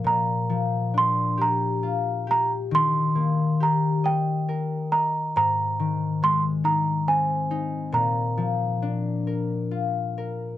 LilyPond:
<<
  \new Staff \with { instrumentName = "Celesta" } { \time 6/8 \key bes \mixolydian \tempo 4. = 45 bes''4 c'''8 bes''4 bes''8 | c'''4 bes''8 g''4 bes''8 | bes''4 c'''8 bes''8 aes''4 | bes''2~ bes''8 r8 | }
  \new Staff \with { instrumentName = "Harp" } { \time 6/8 \key bes \mixolydian bes,8 f8 d'8 g'8 f'8 g'8 | ees8 bes8 g'8 ees''8 bes'8 ees''8 | aes,8 ees8 aes8 ees'8 c'8 ees'8 | bes,8 f8 d'8 bes'8 f'8 bes'8 | }
>>